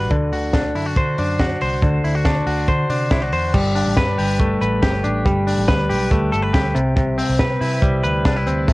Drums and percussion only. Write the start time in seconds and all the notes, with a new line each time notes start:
0.11 kick, closed hi-hat
0.33 open hi-hat
0.53 kick, snare, closed hi-hat
0.75 open hi-hat
0.96 kick
1.18 open hi-hat
1.39 kick, snare, closed hi-hat
1.61 open hi-hat
1.82 kick, closed hi-hat
2.04 open hi-hat
2.25 kick, snare, closed hi-hat
2.47 open hi-hat
2.68 kick, closed hi-hat
2.90 open hi-hat
3.11 kick, snare, closed hi-hat
3.33 open hi-hat
3.54 kick, crash
3.76 hi-hat pedal, open hi-hat
3.97 kick, snare, hi-hat pedal, open hi-hat
4.19 hi-hat pedal, open hi-hat
4.40 kick
4.62 hi-hat pedal, open hi-hat
4.83 kick, snare, hi-hat pedal, open hi-hat
5.04 hi-hat pedal, open hi-hat
5.26 kick, hi-hat pedal, open hi-hat
5.47 hi-hat pedal, open hi-hat
5.68 kick, snare, hi-hat pedal, open hi-hat
5.90 hi-hat pedal, open hi-hat
6.11 kick, hi-hat pedal, open hi-hat
6.33 hi-hat pedal, open hi-hat
6.54 kick, snare, hi-hat pedal, open hi-hat
6.76 hi-hat pedal, open hi-hat
6.97 kick, hi-hat pedal, open hi-hat
7.18 hi-hat pedal, open hi-hat
7.39 kick, snare
7.61 hi-hat pedal, open hi-hat
7.82 kick, hi-hat pedal, open hi-hat
8.04 hi-hat pedal, open hi-hat
8.25 kick, snare, hi-hat pedal, open hi-hat
8.47 hi-hat pedal, open hi-hat
8.68 kick, hi-hat pedal, open hi-hat